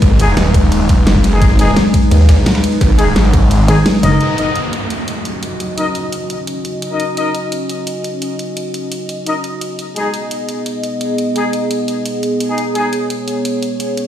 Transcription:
0.00 0.36 G#1 loud
0.00 4.17 G#3 medium
0.00 4.17 D#4 medium
0.00 4.17 B4 medium
0.00 kick loud
0.00 closed hi-hat medium
0.00 ride medium
0.11 cross-stick soft
0.19 0.27 G#3 medium
0.19 0.27 D#4 medium
0.19 0.27 G#4 loud
0.19 closed hi-hat medium
0.19 ride medium
0.37 0.88 D#1 loud
0.37 snare loud
0.37 closed hi-hat medium
0.37 ride medium
0.46 ride soft
0.54 kick loud
0.54 cross-stick soft
0.54 closed hi-hat medium
0.54 ride medium
0.63 snare medium
0.72 closed hi-hat medium
0.72 ride medium
0.89 1.05 D#1 medium
0.89 kick loud
0.89 snare medium
0.89 closed hi-hat loud
0.89 ride medium
1.07 1.40 F#1 loud
1.07 snare loud
1.07 closed hi-hat medium
1.07 ride medium
1.15 kick medium
1.15 snare soft
1.24 snare soft
1.24 closed hi-hat loud
1.24 ride medium
1.33 1.46 G#3 medium
1.33 1.46 D#4 medium
1.33 1.46 G#4 medium
1.33 cross-stick medium
1.42 1.75 G#1 loud
1.42 kick loud
1.42 closed hi-hat medium
1.42 ride medium
1.50 ride soft
1.59 1.72 G#3 loud
1.59 1.72 D#4 medium
1.59 1.72 G#4 loud
1.59 snare soft
1.59 closed hi-hat loud
1.59 ride medium
1.76 snare loud
1.76 closed hi-hat medium
1.76 ride medium
1.94 kick loud
1.94 closed hi-hat loud
1.94 ride medium
2.03 ride soft
2.11 2.45 D#2 loud
2.11 cross-stick soft
2.11 snare soft
2.11 closed hi-hat medium
2.11 ride medium
2.29 kick medium
2.29 snare loud
2.29 closed hi-hat loud
2.29 ride medium
2.46 snare loud
2.46 closed hi-hat medium
2.46 ride medium
2.55 snare loud
2.55 ride medium
2.64 closed hi-hat loud
2.64 ride medium
2.72 ride soft
2.81 3.15 G#1 loud
2.81 kick loud
2.81 closed hi-hat medium
2.81 ride medium
2.90 cross-stick soft
2.99 3.07 G#3 loud
2.99 3.07 D#4 medium
2.99 3.07 G#4 loud
2.99 cross-stick soft
2.99 closed hi-hat loud
2.99 ride medium
3.16 3.67 G#1 loud
3.16 snare loud
3.16 closed hi-hat medium
3.16 ride medium
3.25 ride soft
3.33 kick loud
3.33 cross-stick medium
3.33 closed hi-hat loud
3.33 ride medium
3.42 snare soft
3.51 closed hi-hat medium
3.51 ride medium
3.68 3.84 G#1 loud
3.68 3.76 G#3 medium
3.68 3.76 D#4 medium
3.68 3.76 G#4 loud
3.68 snare medium
3.68 closed hi-hat loud
3.68 ride medium
3.86 snare loud
3.86 closed hi-hat medium
3.86 ride medium
3.95 ride soft
4.03 4.19 F#1 loud
4.03 4.36 D#4 loud
4.03 4.36 A#4 medium
4.03 4.36 D#5 loud
4.03 snare soft
4.03 closed hi-hat loud
4.03 ride medium
4.12 cross-stick medium
4.12 snare soft
4.21 9.75 C#4 medium
4.21 9.75 F#4 medium
4.21 9.75 D#5 medium
4.21 closed hi-hat medium
4.21 downlifter medium
4.38 4.51 D#4 medium
4.38 4.51 A#4 medium
4.38 4.51 D#5 loud
4.38 closed hi-hat medium
4.56 closed hi-hat medium
4.73 closed hi-hat medium
4.90 closed hi-hat medium
5.08 closed hi-hat medium
5.25 closed hi-hat medium
5.43 closed hi-hat loud
5.60 closed hi-hat medium
5.78 5.86 D#4 medium
5.78 5.86 A#4 medium
5.78 5.86 D#5 medium
5.78 closed hi-hat medium
5.95 closed hi-hat medium
6.12 closed hi-hat medium
6.30 closed hi-hat medium
6.47 closed hi-hat medium
6.65 closed hi-hat medium
6.82 closed hi-hat medium
6.91 7.04 D#4 medium
6.91 7.04 A#4 medium
6.91 7.04 D#5 medium
7.00 closed hi-hat medium
7.17 7.30 D#4 medium
7.17 7.30 A#4 medium
7.17 7.30 D#5 loud
7.17 closed hi-hat medium
7.35 closed hi-hat medium
7.52 closed hi-hat medium
7.69 closed hi-hat medium
7.87 closed hi-hat medium
8.04 closed hi-hat medium
8.22 closed hi-hat medium
8.39 closed hi-hat medium
8.57 closed hi-hat medium
8.74 closed hi-hat medium
8.92 closed hi-hat medium
9.09 closed hi-hat medium
9.26 9.34 D#4 medium
9.26 9.34 A#4 medium
9.26 9.34 D#5 medium
9.26 closed hi-hat medium
9.44 closed hi-hat medium
9.61 closed hi-hat medium
9.79 14.07 B3 medium
9.79 14.07 G#4 medium
9.79 12.55 D#5 medium
9.79 closed hi-hat medium
9.96 10.09 G#3 medium
9.96 10.09 D#4 medium
9.96 10.09 G#4 loud
9.96 closed hi-hat medium
10.14 closed hi-hat medium
10.31 closed hi-hat medium
10.49 closed hi-hat medium
10.66 closed hi-hat medium
10.83 closed hi-hat medium
11.01 closed hi-hat medium
11.18 closed hi-hat medium
11.36 11.44 G#3 medium
11.36 11.44 D#4 medium
11.36 11.44 G#4 loud
11.36 closed hi-hat medium
11.53 closed hi-hat medium
11.71 closed hi-hat medium
11.88 closed hi-hat medium
12.06 closed hi-hat medium
12.23 closed hi-hat medium
12.40 closed hi-hat medium
12.49 12.62 G#3 medium
12.49 12.62 D#4 medium
12.49 12.62 G#4 medium
12.58 14.07 C#5 medium
12.58 closed hi-hat medium
12.75 12.88 G#3 medium
12.75 12.88 D#4 medium
12.75 12.88 G#4 loud
12.75 closed hi-hat medium
12.93 closed hi-hat medium
13.10 closed hi-hat medium
13.28 closed hi-hat medium
13.45 closed hi-hat loud
13.63 closed hi-hat medium
13.80 closed hi-hat medium
13.97 closed hi-hat medium

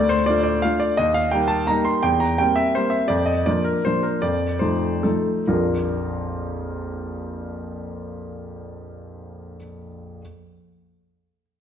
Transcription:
0.00 0.27 D2 medium
0.00 0.10 D5 medium
0.09 0.27 C5 medium
0.26 0.60 A3 soft
0.26 0.60 D4 soft
0.26 0.61 F4 soft
0.26 0.42 D5 medium
0.43 0.62 D5 medium
0.62 0.95 A3 soft
0.62 0.95 D4 soft
0.62 0.95 F4 soft
0.62 0.80 F5 medium
0.80 0.97 D5 medium
0.97 1.32 D#2 medium
0.97 1.15 D#5 medium
1.14 1.32 F5 medium
1.31 1.65 G3 soft
1.31 1.66 A#3 soft
1.31 1.66 D#4 soft
1.31 1.50 G5 medium
1.48 1.67 A5 medium
1.67 2.00 G3 soft
1.67 2.01 A#3 soft
1.67 2.01 D#4 soft
1.67 1.86 A#5 medium
1.85 2.03 C6 medium
2.03 2.38 E2 medium
2.03 2.20 G5 medium
2.20 2.38 A#5 medium
2.38 2.72 G3 soft
2.38 2.72 A#3 soft
2.38 2.73 C4 soft
2.38 2.57 G5 medium
2.56 2.74 E5 medium
2.75 3.08 G3 soft
2.75 3.08 A#3 soft
2.75 3.08 C4 soft
2.75 2.93 C5 medium
2.90 3.09 E5 medium
3.08 3.45 F2 medium
3.08 3.27 D5 medium
3.26 3.45 D#5 medium
3.46 3.80 F3 soft
3.46 3.81 A#3 soft
3.46 3.81 D4 soft
3.46 3.65 D5 medium
3.64 3.83 A#4 medium
3.85 4.20 F3 soft
3.85 4.20 A#3 soft
3.85 4.20 D4 soft
3.85 4.03 C5 medium
4.03 4.22 A#4 medium
4.22 4.60 F2 soft
4.22 4.61 D5 medium
4.59 5.00 F3 soft
4.59 5.00 A3 soft
4.59 5.00 D#4 soft
4.59 5.03 C5 medium
5.03 5.45 F3 soft
5.03 5.45 A3 soft
5.03 5.45 D#4 soft
5.03 5.48 A4 soft
5.47 9.57 A#1 soft
5.47 9.56 F2 soft
5.47 9.57 F3 soft
5.47 9.57 A#3 soft
5.47 9.57 D4 soft
5.47 9.57 F4 soft
5.47 9.56 A#4 soft

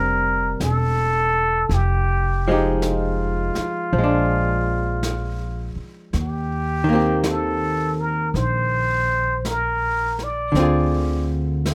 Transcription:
0.00 0.55 F1 medium
0.00 1.71 G3 soft
0.00 1.72 C4 soft
0.00 1.73 D4 soft
0.00 0.61 A#4 medium
0.60 1.67 E1 medium
0.60 1.75 A4 loud
0.60 brush sweep soft
0.60 snare soft
0.60 hi-hat pedal soft
1.69 3.51 F1 medium
1.69 brush sweep soft
1.69 snare soft
1.74 2.65 G4 medium
2.48 3.92 F3 soft
2.48 3.93 G#3 soft
2.48 3.95 D#4 soft
2.52 3.95 G4 medium
2.82 5.74 F4 medium
2.82 brush sweep soft
2.82 snare soft
2.82 hi-hat pedal medium
3.55 muted upright bass stroke soft
3.55 snare soft
3.93 5.73 A#1 medium
3.93 6.14 F3 soft
3.93 brush sweep soft
3.98 6.16 G#3 soft
4.04 6.19 D4 medium
5.03 brush sweep soft
5.03 snare soft
5.03 hi-hat pedal soft
5.76 muted upright bass stroke soft
6.13 8.30 D#2 medium
6.13 brush sweep soft
6.13 snare soft
6.19 7.31 G4 medium
6.84 10.53 D#3 medium
6.89 10.55 A#3 medium
6.89 10.55 C4 medium
6.95 10.59 G4 medium
7.24 brush sweep soft
7.24 snare soft
7.24 hi-hat pedal soft
7.29 8.02 A4 medium
8.01 8.37 A#4 medium
8.34 10.51 A#1 medium
8.34 9.48 C5 medium
8.34 brush sweep soft
8.34 snare soft
9.45 10.25 A#4 loud
9.45 brush sweep soft
9.45 snare soft
9.45 hi-hat pedal medium
10.19 snare soft
10.23 11.32 D5 medium
10.52 11.74 D2 medium
10.52 11.74 D3 soft
10.52 brush sweep soft
10.52 snare soft
10.56 11.74 C4 soft
10.56 11.74 F4 medium
10.62 11.74 G#4 medium
11.65 brush sweep soft
11.65 snare soft
11.65 hi-hat pedal soft

